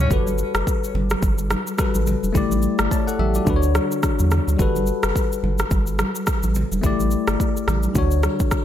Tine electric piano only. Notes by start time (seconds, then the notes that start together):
Already playing: D3 D4 F#4 C#5
0.08 G3 F#4 A4
0.13 B4
1.78 G3 F#4 A4 B4
2.33 A3 E4 G4
2.37 D5
2.91 C#5 A5
3.07 A4 F#5
3.19 G4 E5
3.36 F#4 D5
3.45 D3 D4 F#4
3.50 B4
3.56 C#5
4.57 G3 F#4 A4
4.62 B4
6.81 A3 E4 G4
6.86 D5
7.93 D3 D4 F#4
7.98 C#5